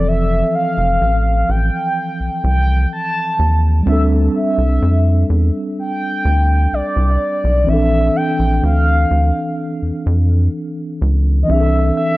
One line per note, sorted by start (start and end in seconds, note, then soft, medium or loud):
0.00 0.43 F1 loud
0.00 3.36 E3 medium
0.00 3.33 F3 medium
0.00 3.35 C4 medium
0.00 3.38 A4 medium
0.08 0.54 E5 loud
0.55 1.51 F5 loud
0.78 0.98 F1 medium
1.01 1.43 A1 loud
1.49 1.70 A1 loud
1.49 2.44 G5 loud
2.20 2.30 C2 soft
2.44 2.86 C2 loud
2.44 2.89 G5 loud
2.93 3.60 A5 loud
3.39 3.81 D#2 medium
3.83 4.29 D2 loud
3.83 7.62 G3 medium
3.83 7.63 C4 medium
3.88 7.65 D4 medium
3.88 4.02 E5 loud
3.92 7.66 A4 medium
4.36 5.26 E5 medium
4.58 4.79 C2 medium
4.82 5.24 F2 loud
5.30 5.51 E2 medium
5.79 6.75 G5 loud
6.25 6.67 D2 medium
6.73 6.82 C2 soft
6.73 7.70 D5 medium
6.96 7.17 C2 medium
7.44 7.65 B1 medium
7.64 8.10 A#1 loud
7.64 11.43 E3 medium
7.64 11.44 C4 medium
7.69 11.46 D4 medium
7.69 8.18 E5 loud
7.73 11.47 A4 medium
8.16 8.63 G5 loud
8.39 8.60 A#1 medium
8.63 9.05 D2 loud
8.63 9.55 F5 medium
9.11 9.32 D2 medium
9.82 9.92 F2 medium
10.06 10.48 F2 medium
11.02 11.43 C#2 medium
11.43 12.17 E3 medium
11.43 11.52 D#5 medium
11.48 11.91 C2 loud
11.48 12.17 C4 medium
11.48 12.17 D4 medium
11.48 11.97 E5 loud
11.54 11.58 G#4 medium
11.61 12.17 A4 medium
11.97 12.17 E5 loud